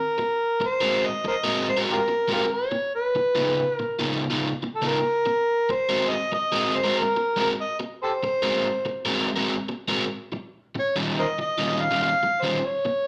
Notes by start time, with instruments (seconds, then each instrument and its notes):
Already playing: harmonica A#4
0.18 muted overdriven electric guitar stroke
0.60 muted overdriven electric guitar stroke
0.67 harmonica C5
0.81 overdriven electric guitar G#3 C4 F#4 A#4
1.06 harmonica D#5
1.24 harmonica A#4 C5 D#5, muted overdriven electric guitar stroke
1.44 overdriven electric guitar G#3 C4 F#4 A#4
1.69 harmonica C5
1.77 overdriven electric guitar G#3 C4 F#4 A#4
1.92 harmonica F4 G4 A#4
2.08 muted overdriven electric guitar stroke
2.28 overdriven electric guitar G#3 C4 F#4 A#4
2.33 harmonica F4 G4 A#4
2.54 harmonica C#5
2.71 muted overdriven electric guitar stroke
2.95 harmonica B4
3.15 muted overdriven electric guitar stroke
3.35 overdriven electric guitar C#3 B3 D#4 F4
3.75 harmonica A#4
3.80 muted overdriven electric guitar stroke
3.99 overdriven electric guitar C#3 B3 D#4 F4
4.30 overdriven electric guitar C#3 B3 D#4 F4
4.63 muted overdriven electric guitar stroke
4.75 harmonica A4
4.82 overdriven electric guitar C#3 B3 D#4 F4
4.86 harmonica A#4
5.26 muted overdriven electric guitar stroke
5.69 harmonica C5, muted overdriven electric guitar stroke
5.89 overdriven electric guitar G#3 C4 F#4 A#4
6.09 harmonica D#5
6.32 harmonica D#5, muted overdriven electric guitar stroke
6.52 overdriven electric guitar G#3 C4 F#4 A#4
6.75 harmonica C5
6.84 overdriven electric guitar G#3 C4 F#4 A#4
6.98 harmonica A#4
7.17 muted overdriven electric guitar stroke
7.36 overdriven electric guitar G#3 C4 F#4 A#4, harmonica A#4
7.61 harmonica D#5
7.80 muted overdriven electric guitar stroke
8.03 harmonica G4 A4 C5
8.23 muted overdriven electric guitar stroke
8.42 overdriven electric guitar G#3 C4 F#4 A#4
8.85 muted overdriven electric guitar stroke
9.05 overdriven electric guitar G#3 C4 F#4 A#4
9.36 overdriven electric guitar G#3 C4 F#4 A#4
9.69 muted overdriven electric guitar stroke
9.88 overdriven electric guitar G#3 C4 F#4 A#4
10.32 muted overdriven electric guitar stroke
10.75 harmonica C#5, muted overdriven electric guitar stroke
10.96 overdriven electric guitar D#3 G3 C#4 F4
11.19 harmonica A#4 C5 D#5
11.38 harmonica D#5, muted overdriven electric guitar stroke
11.58 overdriven electric guitar D#3 G3 C#4 F4
11.81 harmonica F5
11.91 overdriven electric guitar D#3 G3 C#4 F4
12.02 harmonica F5
12.23 muted overdriven electric guitar stroke
12.42 overdriven electric guitar D#3 G3 C#4 F4, harmonica C5
12.65 harmonica C#5
12.85 muted overdriven electric guitar stroke